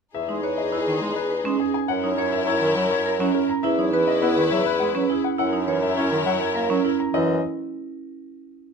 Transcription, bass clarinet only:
0, 0, Header, 1, 2, 480
1, 0, Start_track
1, 0, Tempo, 582524
1, 121, Time_signature, 3, 2, 24, 8
1, 7198, End_track
2, 0, Start_track
2, 0, Title_t, "Bass clarinet"
2, 0, Program_c, 0, 71
2, 240, Note_on_c, 0, 56, 45
2, 331, Note_off_c, 0, 56, 0
2, 723, Note_on_c, 0, 51, 58
2, 812, Note_off_c, 0, 51, 0
2, 837, Note_on_c, 0, 56, 66
2, 929, Note_off_c, 0, 56, 0
2, 1195, Note_on_c, 0, 56, 62
2, 1287, Note_off_c, 0, 56, 0
2, 1670, Note_on_c, 0, 54, 57
2, 1765, Note_off_c, 0, 54, 0
2, 2151, Note_on_c, 0, 51, 63
2, 2245, Note_off_c, 0, 51, 0
2, 2272, Note_on_c, 0, 54, 81
2, 2366, Note_off_c, 0, 54, 0
2, 2634, Note_on_c, 0, 54, 81
2, 2727, Note_off_c, 0, 54, 0
2, 3117, Note_on_c, 0, 54, 61
2, 3208, Note_off_c, 0, 54, 0
2, 3240, Note_on_c, 0, 52, 62
2, 3330, Note_off_c, 0, 52, 0
2, 3483, Note_on_c, 0, 59, 68
2, 3572, Note_off_c, 0, 59, 0
2, 3605, Note_on_c, 0, 51, 71
2, 3693, Note_off_c, 0, 51, 0
2, 3722, Note_on_c, 0, 54, 84
2, 3812, Note_off_c, 0, 54, 0
2, 3963, Note_on_c, 0, 56, 64
2, 4052, Note_off_c, 0, 56, 0
2, 4078, Note_on_c, 0, 54, 75
2, 4169, Note_off_c, 0, 54, 0
2, 4553, Note_on_c, 0, 54, 53
2, 4646, Note_off_c, 0, 54, 0
2, 4673, Note_on_c, 0, 52, 59
2, 4766, Note_off_c, 0, 52, 0
2, 4914, Note_on_c, 0, 61, 64
2, 5007, Note_off_c, 0, 61, 0
2, 5041, Note_on_c, 0, 51, 61
2, 5131, Note_off_c, 0, 51, 0
2, 5157, Note_on_c, 0, 54, 68
2, 5249, Note_off_c, 0, 54, 0
2, 5398, Note_on_c, 0, 58, 60
2, 5489, Note_off_c, 0, 58, 0
2, 5519, Note_on_c, 0, 54, 76
2, 5610, Note_off_c, 0, 54, 0
2, 5876, Note_on_c, 0, 52, 88
2, 6102, Note_off_c, 0, 52, 0
2, 7198, End_track
0, 0, End_of_file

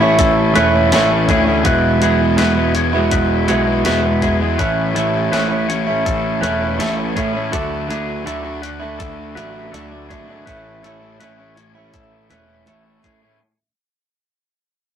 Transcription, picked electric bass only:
0, 0, Header, 1, 2, 480
1, 0, Start_track
1, 0, Key_signature, 3, "major"
1, 0, Tempo, 734394
1, 1078, Time_signature, 4, 2, 24, 8
1, 9776, End_track
2, 0, Start_track
2, 0, Title_t, "Picked electric bass"
2, 0, Program_c, 0, 34
2, 0, Note_on_c, 0, 33, 80
2, 103, Note_off_c, 0, 33, 0
2, 122, Note_on_c, 0, 33, 88
2, 351, Note_off_c, 0, 33, 0
2, 362, Note_on_c, 0, 28, 80
2, 591, Note_off_c, 0, 28, 0
2, 601, Note_on_c, 0, 33, 75
2, 830, Note_off_c, 0, 33, 0
2, 838, Note_on_c, 0, 38, 80
2, 1069, Note_off_c, 0, 38, 0
2, 1080, Note_on_c, 0, 28, 82
2, 1310, Note_off_c, 0, 28, 0
2, 1324, Note_on_c, 0, 28, 79
2, 1552, Note_off_c, 0, 28, 0
2, 1562, Note_on_c, 0, 28, 79
2, 2022, Note_off_c, 0, 28, 0
2, 2037, Note_on_c, 0, 28, 82
2, 2269, Note_off_c, 0, 28, 0
2, 2283, Note_on_c, 0, 35, 79
2, 2512, Note_off_c, 0, 35, 0
2, 2519, Note_on_c, 0, 28, 79
2, 2750, Note_off_c, 0, 28, 0
2, 2758, Note_on_c, 0, 40, 77
2, 2990, Note_off_c, 0, 40, 0
2, 3000, Note_on_c, 0, 33, 86
2, 3229, Note_off_c, 0, 33, 0
2, 3233, Note_on_c, 0, 33, 78
2, 3468, Note_off_c, 0, 33, 0
2, 3475, Note_on_c, 0, 33, 80
2, 3940, Note_off_c, 0, 33, 0
2, 3963, Note_on_c, 0, 33, 86
2, 4192, Note_off_c, 0, 33, 0
2, 4195, Note_on_c, 0, 28, 80
2, 4429, Note_off_c, 0, 28, 0
2, 4437, Note_on_c, 0, 33, 78
2, 4670, Note_off_c, 0, 33, 0
2, 4683, Note_on_c, 0, 45, 83
2, 4913, Note_off_c, 0, 45, 0
2, 4925, Note_on_c, 0, 38, 86
2, 5154, Note_off_c, 0, 38, 0
2, 5160, Note_on_c, 0, 38, 81
2, 5392, Note_off_c, 0, 38, 0
2, 5398, Note_on_c, 0, 38, 83
2, 5861, Note_off_c, 0, 38, 0
2, 5884, Note_on_c, 0, 38, 83
2, 6114, Note_off_c, 0, 38, 0
2, 6116, Note_on_c, 0, 33, 74
2, 6350, Note_off_c, 0, 33, 0
2, 6358, Note_on_c, 0, 38, 80
2, 6590, Note_off_c, 0, 38, 0
2, 6605, Note_on_c, 0, 32, 78
2, 6834, Note_off_c, 0, 32, 0
2, 6844, Note_on_c, 0, 33, 84
2, 7074, Note_off_c, 0, 33, 0
2, 7077, Note_on_c, 0, 33, 77
2, 7310, Note_off_c, 0, 33, 0
2, 7321, Note_on_c, 0, 33, 79
2, 7782, Note_off_c, 0, 33, 0
2, 7802, Note_on_c, 0, 33, 80
2, 8032, Note_off_c, 0, 33, 0
2, 8043, Note_on_c, 0, 28, 71
2, 8272, Note_off_c, 0, 28, 0
2, 8279, Note_on_c, 0, 33, 75
2, 8510, Note_off_c, 0, 33, 0
2, 8523, Note_on_c, 0, 45, 74
2, 8752, Note_off_c, 0, 45, 0
2, 9776, End_track
0, 0, End_of_file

